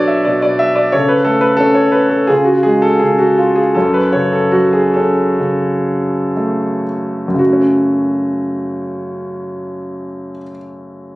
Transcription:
0.00 0.27 B2 medium
0.00 0.96 F#3 medium
0.00 0.96 D4 medium
0.00 0.96 A4 medium
0.00 0.97 B4 medium
0.00 0.92 C#5 medium
0.00 0.25 D5 medium
0.00 0.07 E5 medium
0.07 0.27 E5 medium
0.25 0.92 B2 medium
0.25 0.41 D5 medium
0.42 0.61 D5 medium
0.59 0.77 E5 medium
0.75 0.94 D5 medium
0.92 2.26 C#3 medium
0.92 1.23 A4 medium
0.92 1.10 C#5 medium
1.08 1.27 B4 medium
1.25 2.26 A3 medium
1.25 1.43 A4 medium
1.41 1.60 B4 medium
1.57 2.28 C#4 medium
1.57 1.74 A4 medium
1.74 1.94 C#5 medium
1.92 2.09 B4 medium
2.10 2.27 A4 medium
2.27 3.00 C#3 medium
2.27 3.36 F4 medium
2.27 2.45 G#4 medium
2.44 2.65 F#4 medium
2.63 3.72 G#3 medium
2.63 2.83 G#4 medium
2.82 3.00 A4 medium
2.99 3.73 C#3 medium
2.99 3.19 G#4 medium
3.18 3.38 F#4 medium
3.38 3.57 F4 medium
3.56 3.76 G#4 medium
3.74 7.26 F#2 medium
3.74 4.95 C#4 medium
3.74 3.95 A4 medium
3.94 4.14 B4 medium
4.13 5.38 C#3 medium
4.13 4.33 C#5 medium
4.33 4.54 A4 medium
4.52 6.32 F#3 medium
4.52 4.71 F#4 medium
4.73 4.93 G#4 medium
4.94 6.84 C#4 soft
4.94 6.83 A4 medium
5.39 7.33 C#3 soft
6.37 7.37 A3 soft
7.28 10.30 F#2 medium
7.34 10.36 C#3 soft
7.39 10.43 F#3 soft
7.39 10.41 F#4 medium
7.47 10.49 A3 soft
7.53 10.55 C#4 medium

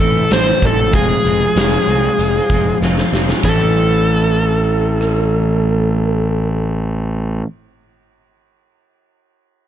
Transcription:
0.00 0.20 A1 medium
0.00 0.32 E3 medium
0.00 0.33 A3 medium
0.00 0.34 C4 medium
0.00 0.34 E4 medium
0.00 0.33 A4 medium
0.00 kick medium
0.00 closed hi-hat medium
0.31 0.51 A1 medium
0.31 0.92 A2 medium
0.31 0.61 E3 medium
0.31 0.62 A3 medium
0.31 0.64 C4 medium
0.31 0.64 C5 loud
0.31 snare loud
0.31 closed hi-hat medium
0.35 0.64 E4 loud
0.62 0.93 A1 medium
0.62 0.91 E3 medium
0.62 0.80 A3 medium
0.62 0.79 C4 medium
0.62 0.76 E4 medium
0.62 kick medium
0.62 closed hi-hat medium
0.66 0.95 A4 medium
0.77 0.93 A3 medium
0.77 0.94 C4 medium
0.77 0.91 E4 medium
0.92 1.13 F1 medium
0.92 1.23 F3 medium
0.92 1.24 G#3 medium
0.92 1.25 C4 loud
0.92 1.26 F4 medium
0.92 2.78 G#4 medium
0.92 kick medium
0.92 closed hi-hat medium
1.25 1.44 F1 medium
1.25 1.53 F3 medium
1.25 1.43 G#3 medium
1.25 1.41 C4 medium
1.25 1.39 F4 medium
1.25 closed hi-hat soft
1.40 1.55 G#3 medium
1.40 1.56 C4 soft
1.40 1.57 F4 medium
1.54 1.76 F1 medium
1.54 1.86 F3 medium
1.54 1.88 G#3 loud
1.54 1.89 C4 loud
1.54 1.90 F4 medium
1.54 snare medium
1.54 closed hi-hat medium
1.88 2.08 C2 medium
1.88 2.34 F3 medium
1.88 2.06 G#3 medium
1.88 2.05 C4 medium
1.88 2.03 F4 medium
1.88 closed hi-hat medium
2.04 2.37 G#3 medium
2.04 2.36 C4 medium
2.04 2.34 F4 medium
2.19 2.39 F1 medium
2.19 closed hi-hat medium
2.35 2.51 G#3 medium
2.35 2.52 C4 medium
2.35 2.53 F4 medium
2.50 2.70 F1 medium
2.50 2.80 F3 medium
2.50 2.82 G#3 medium
2.50 2.82 C4 medium
2.50 kick medium
2.50 closed hi-hat soft
2.54 2.84 F4 medium
2.81 3.01 F1 medium
2.81 3.12 F3 medium
2.81 3.14 G#3 medium
2.81 3.15 C4 medium
2.81 snare medium
2.85 3.16 F4 medium
2.98 snare medium
3.13 3.33 F1 medium
3.13 3.42 F3 medium
3.13 3.31 G#3 medium
3.13 3.29 C4 medium
3.13 snare medium
3.17 3.28 F4 medium
3.29 3.44 G#3 soft
3.29 3.43 C4 medium
3.29 3.42 F4 medium
3.29 snare medium
3.43 7.41 A1 medium
3.43 7.45 A2 medium
3.43 7.45 E3 medium
3.43 7.46 A3 medium
3.43 7.46 C4 medium
3.43 6.71 A4 medium
3.43 kick medium
3.43 ride medium
3.47 7.47 E4 medium
5.01 cross-stick soft

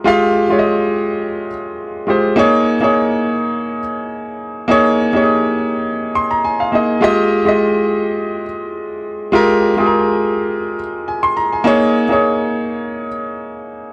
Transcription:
0.00 0.04 G#3 medium
0.00 0.05 F4 medium
0.00 0.06 G4 medium
0.00 2.40 A#4 medium
0.04 0.42 G#3 medium
0.04 0.43 F4 medium
0.04 0.43 G4 medium
0.04 0.44 F5 loud
0.49 1.47 G#3 medium
0.49 1.47 F4 medium
0.49 1.48 G4 medium
0.49 0.57 C#5 medium
0.59 1.52 D#5 medium
2.07 2.33 G#3 medium
2.07 2.33 F4 medium
2.07 2.34 G4 medium
2.07 2.34 C5 medium
2.36 2.74 A#3 medium
2.36 2.75 D#4 medium
2.36 2.75 G#4 medium
2.36 2.76 C#5 loud
2.81 3.79 A#3 medium
2.81 3.79 D#4 medium
2.81 3.80 G#4 medium
2.81 3.80 C#5 medium
4.68 5.06 A#3 medium
4.68 5.07 D#4 medium
4.68 5.07 G#4 medium
4.68 5.08 C#5 loud
5.13 6.11 A#3 medium
5.13 6.11 D#4 medium
5.13 5.21 G4 medium
5.13 6.12 C#5 medium
5.22 6.15 G#4 medium
6.15 6.30 C6 medium
6.31 6.43 A#5 medium
6.44 6.59 G#5 medium
6.60 6.99 F5 medium
6.72 6.97 A#3 medium
6.72 6.98 D#4 medium
6.72 6.98 G#4 medium
6.72 6.99 D#5 medium
7.01 7.38 G#3 medium
7.01 7.39 F4 medium
7.01 7.40 G4 medium
7.01 7.40 D#5 loud
7.45 8.43 G#3 medium
7.45 8.43 F4 medium
7.45 8.44 G4 medium
7.45 8.44 D#5 medium
9.32 9.70 G#3 medium
9.32 9.71 F4 medium
9.32 9.71 G4 medium
9.32 9.72 A#4 loud
9.76 10.74 G#3 medium
9.76 10.75 F4 medium
9.76 10.75 G4 medium
9.76 9.85 G#4 medium
9.86 10.79 A#4 medium
11.08 11.23 G#5 medium
11.23 11.36 C6 medium
11.37 11.51 A#5 medium
11.53 11.80 G#5 medium
11.64 12.02 A#3 medium
11.64 12.03 D#4 medium
11.64 12.03 G#4 medium
11.64 12.04 C#5 loud
12.09 13.06 A#3 medium
12.09 13.07 D#4 medium
12.09 13.07 G#4 medium
12.09 13.08 C#5 medium

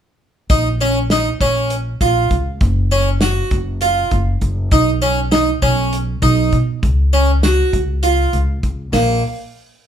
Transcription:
0.50 1.28 A#1 medium
0.50 0.66 D#4 medium
0.50 kick loud
0.50 closed hi-hat medium
0.80 0.97 C#4 medium
0.80 closed hi-hat medium
1.10 1.27 D#4 medium
1.10 snare medium
1.10 closed hi-hat medium
1.40 1.92 A#1 medium
1.40 1.74 C#4 medium
1.40 kick medium
1.40 closed hi-hat medium
1.70 closed hi-hat medium
2.01 2.27 A#1 medium
2.01 2.34 F4 medium
2.01 kick medium
2.01 closed hi-hat medium
2.31 2.57 C#2 medium
2.31 kick medium
2.31 closed hi-hat medium
2.61 3.39 F#1 medium
2.61 kick loud
2.61 closed hi-hat medium
2.91 3.08 C#4 medium
2.91 closed hi-hat medium
3.21 3.54 F#4 medium
3.21 snare loud
3.21 closed hi-hat medium
3.51 4.03 F#1 medium
3.51 kick medium
3.51 closed hi-hat medium
3.81 4.14 F4 medium
3.81 closed hi-hat medium
4.11 4.37 F#1 medium
4.11 kick medium
4.11 closed hi-hat medium
4.41 4.68 F#1 medium
4.41 kick medium
4.41 closed hi-hat medium
4.71 5.50 B1 medium
4.71 4.88 D#4 medium
4.71 kick loud
4.71 closed hi-hat medium
5.02 5.18 C#4 medium
5.02 closed hi-hat medium
5.32 5.48 D#4 medium
5.32 snare loud
5.32 closed hi-hat medium
5.62 6.14 B1 medium
5.62 5.95 C#4 medium
5.62 kick medium
5.62 closed hi-hat medium
5.93 closed hi-hat medium
6.22 6.48 B1 loud
6.22 6.55 D#4 medium
6.22 kick medium
6.22 closed hi-hat medium
6.52 6.78 B2 medium
6.52 kick medium
6.52 closed hi-hat medium
6.83 7.61 C#2 medium
6.83 kick medium
6.83 closed hi-hat medium
7.13 7.29 C#4 medium
7.13 closed hi-hat medium
7.43 7.76 F#4 medium
7.43 snare medium
7.43 closed hi-hat medium
7.73 8.25 C#2 medium
7.73 kick medium
7.73 closed hi-hat medium
8.03 8.36 F4 medium
8.03 closed hi-hat medium
8.33 8.59 C#2 medium
8.33 closed hi-hat medium
8.63 8.89 C#2 medium
8.63 kick medium
8.63 closed hi-hat medium
8.92 9.21 A#1 medium
8.92 9.21 A#3 medium
8.92 snare medium
8.92 open hi-hat medium

